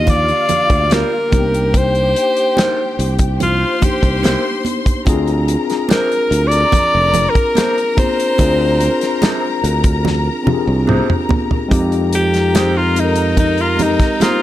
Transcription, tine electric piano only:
Already playing: D3 A#3 D4 F4 G4
1.31 A#3 D4 D#4 G4
3.80 A#3 D4 D#4 G4
5.05 C4 D4 F4
5.09 G#4
5.67 C4 D4 F4 G#4
7.95 C4 D4 F4 G#4
8.37 C4 D4 F4
8.41 G#4
10.43 C4 D4 F4
10.48 G4
10.53 G#4
11.68 G#3 C4 D#4 G4
12.94 G#3 C4 D#4 A4
13.04 A#4
13.76 G#3 C4 D#4 G4

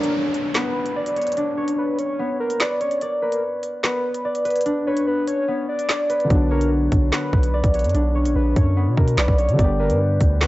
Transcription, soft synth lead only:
Already playing: A#4
0.55 B4
1.58 C#5
1.78 B4
1.99 C#5
2.40 A#4
2.60 B4
2.81 C#5
3.22 A#4
3.84 B4
4.86 C#5
5.07 B4
5.28 C#5
5.69 D5
6.51 A#4
7.12 B4
8.15 C#5
8.36 B4
8.56 C#5
8.97 A#4
9.18 B4
9.38 C#5
9.79 A#4
10.41 B4

